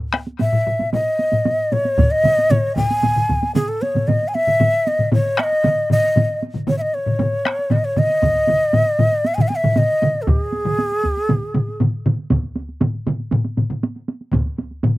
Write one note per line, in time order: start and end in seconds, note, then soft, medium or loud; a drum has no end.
0.13 taiko rim medium
0.13 taiko high medium
0.27 taiko high soft
0.39 0.90 E5 medium
0.39 taiko low-mid medium
0.39 taiko high medium
0.53 taiko low-mid medium
0.67 taiko low-mid medium
0.79 taiko low-mid medium
0.79 taiko high medium
0.93 1.74 D#5 medium
0.93 taiko low-mid medium
0.93 taiko high medium
1.19 taiko high medium
1.32 taiko low-mid medium
1.32 taiko high medium
1.45 taiko low-mid medium
1.45 taiko high medium
1.72 2.12 C#5 medium
1.72 taiko low-mid medium
1.72 taiko high medium
1.85 taiko high medium
1.98 taiko medium
1.98 taiko low-mid medium
1.98 taiko mid medium
1.98 taiko high medium
2.11 2.52 D#5 medium
2.24 taiko low-mid loud
2.24 taiko mid loud
2.24 taiko high medium
2.38 taiko high soft
2.50 2.76 C#5 medium
2.50 taiko low-mid loud
2.50 taiko mid loud
2.50 taiko high medium
2.76 3.51 G#5 medium
2.76 taiko medium
2.76 taiko low-mid loud
2.76 taiko mid loud
2.76 taiko high medium
2.91 taiko high medium
3.03 taiko low-mid medium
3.03 taiko mid medium
3.03 taiko high medium
3.16 taiko low-mid medium
3.16 taiko mid medium
3.29 taiko medium
3.29 taiko low-mid medium
3.29 taiko mid medium
3.29 taiko high medium
3.43 taiko high medium
3.55 3.70 G#4 medium
3.55 taiko low-mid medium
3.55 taiko mid loud
3.55 taiko high medium
3.68 3.83 A4 medium
3.82 4.09 C#5 medium
3.82 taiko high medium
3.95 taiko low-mid medium
3.95 taiko mid medium
3.95 taiko high medium
4.08 4.30 D#5 medium
4.08 taiko low-mid medium
4.08 taiko mid medium
4.08 taiko high medium
4.23 taiko high soft
4.28 4.37 G#5 medium
4.35 4.89 E5 medium
4.35 taiko high medium
4.47 taiko low-mid medium
4.47 taiko mid medium
4.47 taiko high soft
4.60 taiko low-mid medium
4.60 taiko mid medium
4.60 taiko high medium
4.74 taiko high soft
4.87 5.13 D#5 medium
4.87 taiko high medium
4.99 taiko low-mid medium
4.99 taiko mid medium
4.99 taiko high soft
5.12 5.41 C#5 medium
5.12 taiko low-mid loud
5.12 taiko mid medium
5.12 taiko high medium
5.26 taiko high soft
5.38 5.45 E5 medium
5.38 taiko rim medium
5.38 taiko high medium
5.43 5.91 D#5 medium
5.52 taiko high soft
5.64 taiko low-mid medium
5.64 taiko mid loud
5.64 taiko high medium
5.90 6.40 D#5 medium
5.90 taiko low-mid medium
5.90 taiko mid loud
5.90 taiko high medium
6.04 taiko high soft
6.16 taiko low-mid medium
6.16 taiko mid medium
6.16 taiko high medium
6.30 taiko high soft
6.43 taiko high medium
6.54 taiko low-mid medium
6.54 taiko mid medium
6.54 taiko high soft
6.67 6.77 C#5 medium
6.67 taiko low-mid loud
6.67 taiko mid medium
6.67 taiko high medium
6.78 6.96 D#5 medium
6.78 6.83 E5 medium
6.78 taiko high soft
6.94 7.73 C#5 medium
7.06 taiko low-mid medium
7.06 taiko mid medium
7.06 taiko high soft
7.19 taiko low-mid loud
7.19 taiko mid loud
7.19 taiko high medium
7.33 taiko high soft
7.45 taiko rim medium
7.45 taiko high medium
7.59 taiko high soft
7.71 7.86 D#5 medium
7.71 taiko low-mid medium
7.71 taiko mid loud
7.71 taiko high medium
7.84 8.00 C#5 medium
7.97 9.28 D#5 medium
7.97 taiko low-mid loud
7.97 taiko mid loud
7.97 taiko high medium
8.10 taiko high soft
8.22 taiko medium
8.22 taiko low-mid medium
8.22 taiko mid medium
8.22 taiko high medium
8.35 taiko high soft
8.47 taiko low-mid loud
8.47 taiko mid medium
8.47 taiko high medium
8.60 taiko high soft
8.73 taiko low-mid loud
8.73 taiko mid loud
8.73 taiko high medium
8.86 taiko high soft
8.99 taiko low-mid loud
8.99 taiko mid medium
8.99 taiko high soft
9.12 taiko high soft
9.25 9.36 E5 medium
9.25 taiko high medium
9.35 9.43 G#5 medium
9.35 taiko low-mid medium
9.35 taiko mid loud
9.35 taiko high soft
9.41 9.50 E5 medium
9.48 9.57 G#5 medium
9.48 taiko high soft
9.56 9.79 E5 medium
9.64 taiko low-mid loud
9.64 taiko mid loud
9.64 taiko high soft
9.76 10.23 D#5 medium
9.76 taiko low-mid medium
9.76 taiko mid loud
9.76 taiko high medium
10.02 taiko low-mid medium
10.02 taiko mid loud
10.02 taiko high medium
10.15 taiko high soft
10.22 10.30 A4 medium
10.27 10.39 G4 medium
10.27 taiko loud
10.27 taiko low-mid medium
10.27 taiko mid medium
10.27 taiko high medium
10.39 11.81 G#4 medium
10.39 taiko high soft
10.52 taiko high medium
10.65 taiko low-mid medium
10.65 taiko mid loud
10.65 taiko high soft
10.79 taiko high medium
10.92 taiko high soft
11.04 taiko medium
11.04 taiko high soft
11.17 taiko high soft
11.29 taiko low-mid loud
11.29 taiko mid loud
11.29 taiko high medium
11.54 taiko low-mid medium
11.54 taiko mid loud
11.54 taiko high medium
11.68 taiko high soft
11.80 taiko low-mid medium
11.80 taiko mid loud
11.80 taiko high medium
12.06 taiko low-mid medium
12.06 taiko mid loud
12.06 taiko high medium
12.18 taiko high soft
12.30 taiko medium
12.30 taiko low-mid medium
12.30 taiko mid medium
12.30 taiko high medium
12.43 taiko high soft
12.56 taiko high medium
12.69 taiko high soft
12.81 taiko low-mid loud
12.81 taiko mid medium
12.81 taiko high medium
12.95 taiko high soft
13.07 taiko low-mid loud
13.07 taiko mid medium
13.07 taiko high medium
13.20 taiko high soft
13.31 taiko low-mid loud
13.31 taiko mid medium
13.31 taiko high medium
13.45 taiko high soft
13.57 taiko low-mid medium
13.57 taiko mid medium
13.57 taiko high medium
13.70 taiko low-mid medium
13.70 taiko mid medium
13.70 taiko high soft
13.83 taiko high medium
13.96 taiko high soft
14.08 taiko high medium
14.21 taiko high soft
14.33 taiko medium
14.33 taiko low-mid loud
14.33 taiko mid medium
14.33 taiko high medium
14.46 taiko high soft
14.58 taiko high medium
14.71 taiko high soft
14.83 taiko low-mid loud
14.83 taiko mid loud
14.83 taiko high medium